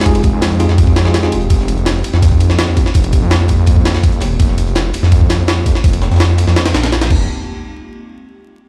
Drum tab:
CC |--------------------------------|--------------------------------|--------------------------------|--------------------------------|
RD |x-x-x---x---x---x---x---x---x---|x---x---x---x---x---x---x---x---|x-x-x---x---x---x---x---x---x---|x---x---x---x---x---x---x---x---|
HH |x---x---x-x-x---x---o---x-x-x-x-|x---x-x-x---x---x---x---x---x---|x---x---x-x-x---x---o---x-x-x---|x---x-x-x---x---x---x---x---x---|
SD |--------o-----o-----o-o-o-o-----|--o-----o-----o-------o-o-o---o-|--------o-----------o-o-----o---|--o-----o-----o-----o---o-o---o-|
BD |o---o-----------o-o-------------|o---------------o-o---------o---|o---o-------o---o-o-----o-------|o---------------o-o---------o---|

CC |----------------------------x---|--------------------------------|
RD |x-x-----x---x---x-x-x-x-x-x-----|--------------------------------|
HH |x---x-xxx-x-x---x---x-x-x-x-----|--------------------------------|
SD |----o-ooo-----o-o-o-o-o-o-o-----|--------------------------------|
BD |o---------------------------o---|--------------------------------|